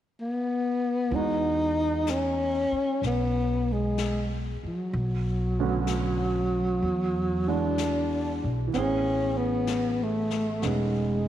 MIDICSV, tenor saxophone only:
0, 0, Header, 1, 2, 480
1, 0, Start_track
1, 0, Key_signature, 4, "major"
1, 0, Tempo, 950872
1, 561, Time_signature, 4, 2, 24, 8
1, 5694, End_track
2, 0, Start_track
2, 0, Title_t, "Tenor saxophone"
2, 0, Program_c, 0, 66
2, 102, Note_on_c, 0, 59, 72
2, 580, Note_on_c, 0, 63, 82
2, 587, Note_off_c, 0, 59, 0
2, 1059, Note_on_c, 0, 61, 74
2, 1066, Note_off_c, 0, 63, 0
2, 1534, Note_off_c, 0, 61, 0
2, 1546, Note_on_c, 0, 59, 66
2, 1878, Note_on_c, 0, 56, 60
2, 1886, Note_off_c, 0, 59, 0
2, 2162, Note_off_c, 0, 56, 0
2, 2358, Note_on_c, 0, 54, 74
2, 3777, Note_on_c, 0, 62, 68
2, 3784, Note_off_c, 0, 54, 0
2, 4321, Note_off_c, 0, 62, 0
2, 4410, Note_on_c, 0, 61, 78
2, 4732, Note_on_c, 0, 59, 66
2, 4740, Note_off_c, 0, 61, 0
2, 5062, Note_on_c, 0, 57, 65
2, 5069, Note_off_c, 0, 59, 0
2, 5381, Note_on_c, 0, 56, 62
2, 5389, Note_off_c, 0, 57, 0
2, 5694, Note_off_c, 0, 56, 0
2, 5694, End_track
0, 0, End_of_file